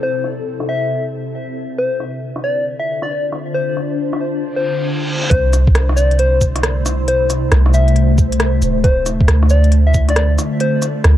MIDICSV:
0, 0, Header, 1, 7, 480
1, 0, Start_track
1, 0, Tempo, 441176
1, 20, Time_signature, 4, 2, 24, 8
1, 12161, End_track
2, 0, Start_track
2, 0, Title_t, "Soft synth lead"
2, 0, Program_c, 0, 80
2, 33, Note_on_c, 0, 72, 87
2, 282, Note_off_c, 0, 72, 0
2, 749, Note_on_c, 0, 76, 90
2, 1140, Note_off_c, 0, 76, 0
2, 1941, Note_on_c, 0, 72, 89
2, 2196, Note_off_c, 0, 72, 0
2, 2652, Note_on_c, 0, 74, 87
2, 2879, Note_off_c, 0, 74, 0
2, 3041, Note_on_c, 0, 76, 85
2, 3257, Note_off_c, 0, 76, 0
2, 3294, Note_on_c, 0, 74, 87
2, 3543, Note_off_c, 0, 74, 0
2, 3856, Note_on_c, 0, 72, 89
2, 4113, Note_off_c, 0, 72, 0
2, 4965, Note_on_c, 0, 72, 92
2, 5294, Note_off_c, 0, 72, 0
2, 5765, Note_on_c, 0, 72, 98
2, 6028, Note_off_c, 0, 72, 0
2, 6488, Note_on_c, 0, 74, 95
2, 6717, Note_off_c, 0, 74, 0
2, 6738, Note_on_c, 0, 72, 94
2, 6994, Note_off_c, 0, 72, 0
2, 7704, Note_on_c, 0, 72, 96
2, 7957, Note_off_c, 0, 72, 0
2, 8421, Note_on_c, 0, 76, 95
2, 8816, Note_off_c, 0, 76, 0
2, 9616, Note_on_c, 0, 72, 98
2, 9873, Note_off_c, 0, 72, 0
2, 10344, Note_on_c, 0, 74, 94
2, 10565, Note_off_c, 0, 74, 0
2, 10736, Note_on_c, 0, 76, 95
2, 10944, Note_off_c, 0, 76, 0
2, 10988, Note_on_c, 0, 74, 91
2, 11230, Note_off_c, 0, 74, 0
2, 11541, Note_on_c, 0, 72, 96
2, 11796, Note_off_c, 0, 72, 0
2, 12161, End_track
3, 0, Start_track
3, 0, Title_t, "Ambient pad"
3, 0, Program_c, 1, 92
3, 0, Note_on_c, 1, 48, 83
3, 0, Note_on_c, 1, 60, 86
3, 0, Note_on_c, 1, 64, 82
3, 0, Note_on_c, 1, 69, 91
3, 1928, Note_on_c, 1, 50, 77
3, 1938, Note_off_c, 1, 48, 0
3, 1944, Note_off_c, 1, 64, 0
3, 2132, Note_on_c, 1, 72, 86
3, 2359, Note_on_c, 1, 62, 87
3, 2493, Note_on_c, 1, 65, 70
3, 3415, Note_off_c, 1, 60, 0
3, 3500, Note_off_c, 1, 69, 0
3, 5767, Note_on_c, 1, 48, 88
3, 5774, Note_off_c, 1, 50, 0
3, 5781, Note_off_c, 1, 65, 0
3, 5952, Note_on_c, 1, 64, 87
3, 5999, Note_on_c, 1, 57, 79
3, 7146, Note_off_c, 1, 62, 0
3, 9613, Note_off_c, 1, 48, 0
3, 9614, Note_off_c, 1, 64, 0
3, 9615, Note_on_c, 1, 50, 95
3, 10381, Note_on_c, 1, 65, 79
3, 12161, Note_off_c, 1, 50, 0
3, 12161, Note_off_c, 1, 57, 0
3, 12161, Note_off_c, 1, 65, 0
3, 12161, Note_off_c, 1, 72, 0
3, 12161, End_track
4, 0, Start_track
4, 0, Title_t, "808-style bass"
4, 0, Program_c, 2, 38
4, 5777, Note_on_c, 2, 36, 101
4, 8167, Note_off_c, 2, 36, 0
4, 8180, Note_on_c, 2, 36, 98
4, 9369, Note_off_c, 2, 36, 0
4, 9376, Note_on_c, 2, 26, 83
4, 10087, Note_off_c, 2, 26, 0
4, 10098, Note_on_c, 2, 38, 100
4, 11288, Note_off_c, 2, 38, 0
4, 12021, Note_on_c, 2, 38, 103
4, 12161, Note_off_c, 2, 38, 0
4, 12161, End_track
5, 0, Start_track
5, 0, Title_t, "Downlifter"
5, 0, Program_c, 3, 103
5, 0, Note_on_c, 3, 60, 64
5, 1939, Note_off_c, 3, 60, 0
5, 12161, End_track
6, 0, Start_track
6, 0, Title_t, "Reverse cymbal"
6, 0, Program_c, 4, 119
6, 4816, Note_on_c, 4, 60, 69
6, 5778, Note_off_c, 4, 60, 0
6, 12161, End_track
7, 0, Start_track
7, 0, Title_t, "Drums"
7, 262, Note_on_c, 9, 37, 33
7, 371, Note_off_c, 9, 37, 0
7, 655, Note_on_c, 9, 37, 55
7, 764, Note_off_c, 9, 37, 0
7, 2177, Note_on_c, 9, 37, 30
7, 2286, Note_off_c, 9, 37, 0
7, 2566, Note_on_c, 9, 37, 50
7, 2675, Note_off_c, 9, 37, 0
7, 3287, Note_on_c, 9, 37, 46
7, 3396, Note_off_c, 9, 37, 0
7, 3616, Note_on_c, 9, 37, 48
7, 3725, Note_off_c, 9, 37, 0
7, 4099, Note_on_c, 9, 37, 31
7, 4208, Note_off_c, 9, 37, 0
7, 4493, Note_on_c, 9, 37, 51
7, 4602, Note_off_c, 9, 37, 0
7, 5777, Note_on_c, 9, 36, 120
7, 5778, Note_on_c, 9, 42, 59
7, 5886, Note_off_c, 9, 36, 0
7, 5887, Note_off_c, 9, 42, 0
7, 6018, Note_on_c, 9, 37, 36
7, 6018, Note_on_c, 9, 42, 57
7, 6018, Note_on_c, 9, 69, 70
7, 6127, Note_off_c, 9, 37, 0
7, 6127, Note_off_c, 9, 42, 0
7, 6127, Note_off_c, 9, 69, 0
7, 6172, Note_on_c, 9, 36, 106
7, 6256, Note_on_c, 9, 37, 105
7, 6256, Note_on_c, 9, 42, 58
7, 6281, Note_off_c, 9, 36, 0
7, 6364, Note_off_c, 9, 37, 0
7, 6364, Note_off_c, 9, 42, 0
7, 6411, Note_on_c, 9, 37, 61
7, 6497, Note_on_c, 9, 69, 72
7, 6520, Note_off_c, 9, 37, 0
7, 6606, Note_off_c, 9, 69, 0
7, 6650, Note_on_c, 9, 42, 32
7, 6734, Note_off_c, 9, 42, 0
7, 6734, Note_on_c, 9, 42, 57
7, 6843, Note_off_c, 9, 42, 0
7, 6976, Note_on_c, 9, 69, 70
7, 6977, Note_on_c, 9, 36, 57
7, 7084, Note_off_c, 9, 69, 0
7, 7086, Note_off_c, 9, 36, 0
7, 7134, Note_on_c, 9, 37, 53
7, 7134, Note_on_c, 9, 42, 57
7, 7218, Note_off_c, 9, 37, 0
7, 7218, Note_off_c, 9, 42, 0
7, 7218, Note_on_c, 9, 37, 105
7, 7218, Note_on_c, 9, 42, 57
7, 7326, Note_off_c, 9, 37, 0
7, 7326, Note_off_c, 9, 42, 0
7, 7462, Note_on_c, 9, 37, 53
7, 7462, Note_on_c, 9, 42, 33
7, 7462, Note_on_c, 9, 69, 75
7, 7571, Note_off_c, 9, 37, 0
7, 7571, Note_off_c, 9, 42, 0
7, 7571, Note_off_c, 9, 69, 0
7, 7702, Note_on_c, 9, 42, 59
7, 7810, Note_off_c, 9, 42, 0
7, 7940, Note_on_c, 9, 37, 35
7, 7940, Note_on_c, 9, 42, 55
7, 7940, Note_on_c, 9, 69, 70
7, 8049, Note_off_c, 9, 37, 0
7, 8049, Note_off_c, 9, 42, 0
7, 8049, Note_off_c, 9, 69, 0
7, 8178, Note_on_c, 9, 37, 110
7, 8178, Note_on_c, 9, 42, 59
7, 8286, Note_off_c, 9, 37, 0
7, 8286, Note_off_c, 9, 42, 0
7, 8333, Note_on_c, 9, 37, 62
7, 8419, Note_on_c, 9, 69, 69
7, 8442, Note_off_c, 9, 37, 0
7, 8528, Note_off_c, 9, 69, 0
7, 8572, Note_on_c, 9, 42, 32
7, 8659, Note_off_c, 9, 42, 0
7, 8659, Note_on_c, 9, 42, 60
7, 8768, Note_off_c, 9, 42, 0
7, 8900, Note_on_c, 9, 36, 105
7, 8901, Note_on_c, 9, 69, 71
7, 9009, Note_off_c, 9, 36, 0
7, 9010, Note_off_c, 9, 69, 0
7, 9056, Note_on_c, 9, 42, 59
7, 9137, Note_off_c, 9, 42, 0
7, 9137, Note_on_c, 9, 37, 110
7, 9137, Note_on_c, 9, 42, 57
7, 9246, Note_off_c, 9, 37, 0
7, 9246, Note_off_c, 9, 42, 0
7, 9379, Note_on_c, 9, 42, 33
7, 9379, Note_on_c, 9, 69, 71
7, 9488, Note_off_c, 9, 42, 0
7, 9488, Note_off_c, 9, 69, 0
7, 9619, Note_on_c, 9, 36, 127
7, 9619, Note_on_c, 9, 42, 55
7, 9728, Note_off_c, 9, 36, 0
7, 9728, Note_off_c, 9, 42, 0
7, 9858, Note_on_c, 9, 37, 35
7, 9858, Note_on_c, 9, 42, 55
7, 9858, Note_on_c, 9, 69, 70
7, 9967, Note_off_c, 9, 37, 0
7, 9967, Note_off_c, 9, 42, 0
7, 9967, Note_off_c, 9, 69, 0
7, 10016, Note_on_c, 9, 36, 113
7, 10098, Note_on_c, 9, 37, 115
7, 10098, Note_on_c, 9, 42, 57
7, 10125, Note_off_c, 9, 36, 0
7, 10207, Note_off_c, 9, 37, 0
7, 10207, Note_off_c, 9, 42, 0
7, 10256, Note_on_c, 9, 37, 57
7, 10334, Note_on_c, 9, 69, 70
7, 10365, Note_off_c, 9, 37, 0
7, 10443, Note_off_c, 9, 69, 0
7, 10489, Note_on_c, 9, 42, 31
7, 10574, Note_off_c, 9, 42, 0
7, 10574, Note_on_c, 9, 42, 55
7, 10682, Note_off_c, 9, 42, 0
7, 10816, Note_on_c, 9, 69, 67
7, 10819, Note_on_c, 9, 36, 60
7, 10925, Note_off_c, 9, 69, 0
7, 10928, Note_off_c, 9, 36, 0
7, 10974, Note_on_c, 9, 37, 49
7, 10974, Note_on_c, 9, 42, 57
7, 11056, Note_off_c, 9, 37, 0
7, 11056, Note_off_c, 9, 42, 0
7, 11056, Note_on_c, 9, 37, 107
7, 11056, Note_on_c, 9, 42, 57
7, 11165, Note_off_c, 9, 37, 0
7, 11165, Note_off_c, 9, 42, 0
7, 11299, Note_on_c, 9, 37, 52
7, 11299, Note_on_c, 9, 42, 32
7, 11299, Note_on_c, 9, 69, 70
7, 11408, Note_off_c, 9, 37, 0
7, 11408, Note_off_c, 9, 42, 0
7, 11408, Note_off_c, 9, 69, 0
7, 11535, Note_on_c, 9, 42, 56
7, 11644, Note_off_c, 9, 42, 0
7, 11774, Note_on_c, 9, 37, 34
7, 11774, Note_on_c, 9, 42, 53
7, 11774, Note_on_c, 9, 69, 69
7, 11882, Note_off_c, 9, 37, 0
7, 11882, Note_off_c, 9, 42, 0
7, 11882, Note_off_c, 9, 69, 0
7, 12016, Note_on_c, 9, 37, 110
7, 12016, Note_on_c, 9, 42, 55
7, 12124, Note_off_c, 9, 37, 0
7, 12124, Note_off_c, 9, 42, 0
7, 12161, End_track
0, 0, End_of_file